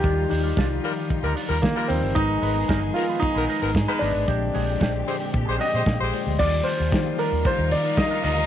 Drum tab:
CC |--------|--------|--------|x-------|
HH |xoxoxoxo|xoxoxoxo|xoxoxoxo|-oxoxoxo|
SD |--o---o-|--o---oo|--o---o-|--o---o-|
BD |o-o-o-o-|o-o-o-o-|o-o-o-o-|o-o-o-o-|